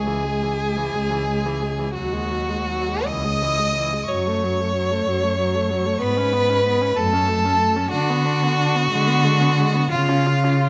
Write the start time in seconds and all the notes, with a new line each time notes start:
Already playing: C#2 G#4 G#5
0.07 E3
0.24 G#3
0.43 E3
0.60 G#3
0.77 E3
0.95 C#2 G#3
1.12 E3
1.30 G#3
1.46 E3
1.62 G#3
1.79 E3
1.94 D#2 F#3 F#4 F#5
2.13 G#3
2.31 F#3
2.49 G#3
2.69 F#3
2.88 G#3
3.05 C#2 E3 D#5 D#6
3.25 G#3
3.42 E3
3.59 G#3
3.76 E3
3.93 G#3
4.08 F#2 F#3 C#5 C#6
4.27 A3
4.44 F#3
4.60 A3
4.75 F#3
4.91 A3
5.07 F#2 F#3
5.23 A3
5.39 F#3
5.55 A3
5.70 F#3
5.86 A3
6.00 G#2 B3 B4 B5
6.17 C#4
6.33 B3
6.49 C#4
6.66 B3
6.82 C#4
6.96 F#2 A3 A4 A5
7.13 C#4
7.29 A3
7.45 C#4
7.61 A3
7.77 C#4
7.91 D3 D4 F#4 F#5
8.10 B3
8.26 D4
8.43 B3
8.60 D4
8.75 B3
8.91 D3 G#3
9.08 B3
9.24 G#3
9.41 B3
9.58 G#3
9.75 B3
9.91 C#3 F4 F5
10.09 C#4
10.27 F4
10.44 C#4
10.60 F4